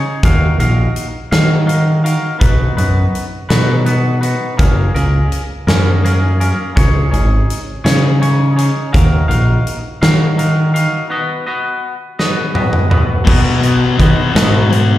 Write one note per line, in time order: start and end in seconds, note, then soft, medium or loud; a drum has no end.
0.00 0.24 C#4 medium
0.00 0.23 D#4 medium
0.00 0.23 G#4 medium
0.00 0.23 C#5 medium
0.23 0.51 D#2 medium
0.23 0.59 D#4 medium
0.23 0.59 F#4 medium
0.23 0.59 A#4 medium
0.23 0.59 F5 medium
0.23 kick loud
0.23 closed hi-hat medium
0.58 0.86 A#1 medium
0.58 1.07 D#4 medium
0.58 1.07 F#4 medium
0.58 1.06 A#4 medium
0.58 1.06 F5 medium
0.58 closed hi-hat medium
0.96 closed hi-hat medium
1.31 2.15 D#3 medium
1.31 1.65 D#4 medium
1.31 1.66 F#4 medium
1.31 1.66 A#4 medium
1.31 1.66 F5 medium
1.31 snare medium
1.31 closed hi-hat medium
1.66 2.03 D#4 medium
1.66 2.04 F#4 medium
1.66 2.04 A#4 medium
1.66 2.03 F5 medium
1.66 closed hi-hat medium
2.04 2.38 D#4 medium
2.04 2.39 F#4 medium
2.04 2.40 A#4 medium
2.04 2.39 F5 medium
2.04 closed hi-hat medium
2.39 2.69 B1 medium
2.39 2.76 B3 medium
2.39 2.76 D#4 medium
2.39 2.76 F#4 medium
2.39 2.76 B4 medium
2.39 kick loud
2.39 closed hi-hat medium
2.77 3.05 F#2 medium
2.77 3.25 B3 medium
2.77 3.24 D#4 medium
2.77 3.24 F#4 medium
2.77 3.24 B4 medium
2.77 closed hi-hat medium
3.15 closed hi-hat soft
3.49 4.33 B2 medium
3.49 3.84 B3 medium
3.49 3.85 D#4 medium
3.49 3.85 F#4 medium
3.49 3.85 B4 medium
3.49 snare medium
3.49 closed hi-hat medium
3.86 4.22 B3 medium
3.86 4.21 D#4 medium
3.86 4.21 F#4 medium
3.86 4.20 B4 medium
3.86 closed hi-hat medium
4.21 4.57 B3 medium
4.21 4.57 D#4 medium
4.21 4.58 F#4 medium
4.21 4.58 B4 medium
4.21 closed hi-hat medium
4.57 4.87 F#1 medium
4.57 4.94 A#3 medium
4.57 4.94 C#4 medium
4.57 4.94 G#4 medium
4.57 4.93 A#4 medium
4.57 kick loud
4.57 closed hi-hat medium
4.95 5.23 C#2 medium
4.95 5.42 A#3 medium
4.95 5.42 C#4 medium
4.95 5.42 G#4 medium
4.95 5.42 A#4 medium
4.95 closed hi-hat medium
5.32 closed hi-hat soft
5.67 6.51 F#2 medium
5.67 6.02 A#3 medium
5.67 6.03 C#4 medium
5.67 6.03 G#4 medium
5.67 6.03 A#4 medium
5.67 snare loud
5.67 closed hi-hat medium
6.03 6.40 A#3 medium
6.03 6.40 C#4 medium
6.03 6.39 G#4 medium
6.03 6.39 A#4 medium
6.03 closed hi-hat medium
6.40 6.75 A#3 medium
6.40 6.74 C#4 medium
6.40 6.75 G#4 medium
6.40 6.76 A#4 medium
6.40 closed hi-hat medium
6.75 7.04 C#2 medium
6.75 7.11 C#4 medium
6.75 7.11 D#4 medium
6.75 7.10 G#4 medium
6.75 7.10 C#5 medium
6.75 kick loud
6.75 closed hi-hat medium
7.11 7.40 G#1 medium
7.11 7.59 C#4 medium
7.11 7.59 D#4 medium
7.11 7.59 G#4 medium
7.11 7.59 C#5 medium
7.11 closed hi-hat medium
7.50 closed hi-hat medium
7.84 8.68 C#3 medium
7.84 8.20 C#4 medium
7.84 8.20 D#4 medium
7.84 8.21 G#4 medium
7.84 8.21 C#5 medium
7.84 snare loud
7.84 closed hi-hat medium
8.21 8.56 C#4 medium
8.21 8.56 D#4 medium
8.21 8.56 G#4 medium
8.21 8.55 C#5 medium
8.21 closed hi-hat medium
8.56 8.92 C#4 medium
8.56 8.91 D#4 medium
8.56 8.92 G#4 medium
8.56 8.93 C#5 medium
8.56 closed hi-hat medium
8.93 9.22 D#2 medium
8.93 9.28 D#4 medium
8.93 9.28 F#4 medium
8.93 9.27 A#4 medium
8.93 9.27 F5 medium
8.93 kick loud
8.93 closed hi-hat medium
9.28 9.57 A#1 medium
9.28 9.76 D#4 medium
9.28 9.76 F#4 medium
9.28 9.76 A#4 medium
9.28 9.76 F5 medium
9.28 closed hi-hat medium
9.67 closed hi-hat medium
10.02 10.85 D#3 medium
10.02 10.36 D#4 medium
10.02 10.37 F#4 medium
10.02 10.37 A#4 medium
10.02 10.38 F5 medium
10.02 snare loud
10.02 closed hi-hat medium
10.37 10.74 D#4 medium
10.37 10.74 F#4 medium
10.37 10.73 A#4 medium
10.37 10.73 F5 medium
10.37 closed hi-hat medium
10.74 11.09 D#4 medium
10.74 11.09 F#4 medium
10.74 11.10 A#4 medium
10.74 11.10 F5 medium
10.74 closed hi-hat medium
11.10 11.46 B3 medium
11.10 11.46 F#4 medium
11.10 11.46 B4 medium
11.10 11.45 D#5 medium
11.46 11.94 B3 medium
11.46 11.94 F#4 medium
11.46 11.94 B4 medium
11.46 11.93 D#5 medium
12.19 12.53 B3 medium
12.19 12.53 F#4 medium
12.19 12.54 B4 medium
12.19 12.54 D#5 loud
12.19 snare medium
12.54 12.91 B3 medium
12.54 12.90 F#4 medium
12.54 12.90 B4 medium
12.54 12.89 D#5 medium
12.54 high tom medium
12.73 mid tom medium
12.90 13.25 B3 medium
12.90 13.26 F#4 medium
12.90 13.27 B4 medium
12.90 13.27 D#5 medium
12.90 mid tom medium
13.25 13.61 B2 medium
13.25 13.83 B2 medium
13.25 13.60 F#3 medium
13.25 13.99 B3 medium
13.25 13.61 B3 medium
13.25 13.65 F#4 medium
13.25 13.64 B4 medium
13.25 13.63 D#5 medium
13.25 kick loud
13.25 crash loud
13.61 13.97 B2 medium
13.61 13.97 F#3 medium
13.61 13.98 B3 medium
13.61 14.01 B4 medium
13.61 14.02 D#5 medium
13.61 closed hi-hat medium
13.66 14.00 F#4 medium
13.97 14.31 B2 medium
13.97 14.14 D#3 medium
13.97 14.32 F#3 medium
13.97 14.32 B3 medium
13.97 14.37 B3 medium
13.97 14.38 F#4 medium
13.97 kick medium
13.97 closed hi-hat medium
14.01 14.35 B4 medium
14.01 14.35 D#5 medium
14.32 14.98 G#2 medium
14.32 14.68 B2 medium
14.32 14.69 F#3 medium
14.32 14.69 B3 medium
14.32 14.98 D#5 medium
14.32 closed hi-hat medium
14.36 14.98 B3 medium
14.36 14.98 F#4 medium
14.36 14.98 B4 medium
14.36 snare loud
14.69 14.98 B2 medium
14.69 14.98 F#3 medium
14.69 14.98 B3 loud
14.69 closed hi-hat medium